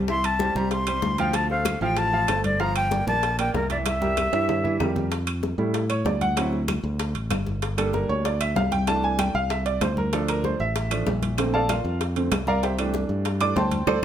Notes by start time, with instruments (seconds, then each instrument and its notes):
Already playing: fingered electric bass C2
0.08 grand piano E3 E4 E5, flute C6, high bongo, high conga
0.24 flute A5, high conga, high timbale, claves
0.39 grand piano G3 G4 C5, high bongo, high conga
0.55 fingered electric bass C2, grand piano G3 G4 C5, flute A#5, high conga
0.71 flute C6, high bongo, high timbale
0.87 grand piano G3 G4 C5, high conga, high timbale, claves
1.02 fingered electric bass D2, high bongo, low bongo, high conga
1.18 grand piano F3 F4 F5, flute G5, high conga, high timbale
1.33 flute A5, high bongo, high conga, high timbale, claves
1.50 grand piano A3 A4 C5, flute F5, high bongo, high conga
1.65 high bongo, high conga, high timbale, claves
1.81 fingered electric bass A1, grand piano F3 F4 F5, flute G5, high conga
1.97 flute A5, high bongo, high conga, high timbale
2.12 grand piano F3 F4 F5, high bongo, high conga
2.28 fingered electric bass G1, grand piano A3 A4 C5, high bongo, low bongo, high conga, high timbale, low timbale, claves
2.44 flute D5, high bongo, high conga, high timbale
2.60 grand piano F3 F4 F5, flute A#5, high bongo, high conga
2.76 flute G5, high conga, high timbale, claves
2.91 grand piano A#3 A#4 D5, high bongo, high conga
3.07 fingered electric bass A#1, grand piano A#3 A#4 D5, flute A5, high conga
3.23 high bongo, high conga, high timbale
3.39 grand piano A#3 A#4 D5, flute G5, high conga, high timbale, claves
3.54 fingered electric bass C2, flute A#4, high bongo, low bongo, high conga, low timbale
3.70 grand piano E3 E4 E5, flute D5, high conga, high timbale
3.86 flute E5, high bongo, high conga, high timbale, claves
4.01 grand piano G3 G4 A#4, high bongo, high conga
4.17 high bongo, high conga, high timbale, claves
4.32 fingered electric bass G2, grand piano E3 E4 E5, high timbale
4.49 high bongo, low conga, high timbale
4.64 grand piano E3 E4 E5, high bongo, low conga
4.80 fingered electric bass F2, grand piano G3 G4 A#4, high bongo, low bongo, low conga, low timbale, claves
4.96 high bongo, low conga, low timbale
5.12 high bongo, high conga, high timbale
5.27 high conga, high timbale, claves
5.43 high bongo, high conga, low timbale
5.58 fingered electric bass A2, grand piano G3 A3 E4, high conga
5.74 high bongo, high conga, high timbale
5.90 grand piano C#5, high conga, high timbale, claves
6.05 fingered electric bass D2, grand piano D5, high bongo, low bongo, high conga, low timbale
6.21 grand piano F#5, high conga, high timbale
6.37 grand piano F#3 C4 E4, high bongo, high conga, high timbale, claves
6.53 high bongo, high conga
6.68 high bongo, high conga, high timbale, low timbale, claves
6.83 fingered electric bass D2, high bongo, high conga
6.99 high bongo, high conga, high timbale
7.15 fingered electric bass A1, high conga, high timbale
7.30 fingered electric bass G1, high bongo, low bongo, high conga, high timbale, low timbale, claves
7.47 high bongo, high conga
7.62 high bongo, high conga, high timbale
7.77 grand piano G3 A#3 D4 A4, high conga, high timbale, claves
7.93 grand piano A#4, high bongo, high conga, low timbale
8.09 fingered electric bass D2, grand piano C#5, high conga
8.25 grand piano D5, high bongo, high conga, high timbale
8.40 grand piano E5, high conga, high timbale, claves
8.56 fingered electric bass C2, grand piano F5, high bongo, low bongo, high conga, low timbale
8.72 grand piano G5, high conga, high timbale
8.87 grand piano E3 A3 D4 A5, high bongo, high conga, high timbale, claves
9.03 grand piano G#5, high bongo, high conga
9.19 grand piano G5, high bongo, high conga, high timbale, low timbale, claves
9.35 fingered electric bass C2, grand piano F5, high bongo, high conga
9.50 grand piano E5, high bongo, high conga, high timbale
9.66 grand piano D5, high conga, high timbale
9.81 fingered electric bass D2, grand piano C5, high bongo, low bongo, high conga, high timbale, low timbale, claves
9.97 grand piano A#4, high bongo, high conga
10.13 grand piano F3 A3 D4 A4, high bongo, high conga, high timbale
10.28 grand piano A#4, high conga, high timbale, claves
10.44 grand piano C5, high bongo, high conga, low timbale
10.60 fingered electric bass A1, grand piano E5, high conga
10.75 high bongo, high conga, high timbale
10.91 grand piano F3 A3 D4, high conga, high timbale, claves
11.06 fingered electric bass A#1, high bongo, low bongo, high conga, low timbale
11.22 high conga, high timbale
11.38 grand piano D3 A3 C4, high bongo, high timbale, claves
11.54 grand piano A4 D5 F5 A5, high bongo, high conga
11.69 grand piano F4 A#4 D5 F5, high bongo, high conga, high timbale, low timbale, claves
11.84 fingered electric bass F2, high bongo, high conga
12.01 high bongo, high conga, high timbale
12.16 grand piano D3 A3 C4, high conga, high timbale
12.32 fingered electric bass C2, high bongo, low bongo, high conga, high timbale, low timbale, claves
12.47 grand piano A#4 D5 F5 A#5, high bongo, high conga
12.63 grand piano G4 C5 E5 G5, high bongo, high conga, high timbale
12.78 grand piano E3 A3 D4, high conga, high timbale, claves
12.94 high bongo, high conga, low timbale
13.09 fingered electric bass G2, high conga
13.25 high bongo, high conga, high timbale
13.41 grand piano E3 A3 D4 D5 D6, high conga, high timbale, claves
13.56 fingered electric bass D2, grand piano C5 G5 A5 C6, high bongo, low bongo, high conga, low timbale
13.71 high conga, high timbale
13.87 fingered electric bass D2, grand piano A4 C5 D5, low bongo, high conga, high timbale, claves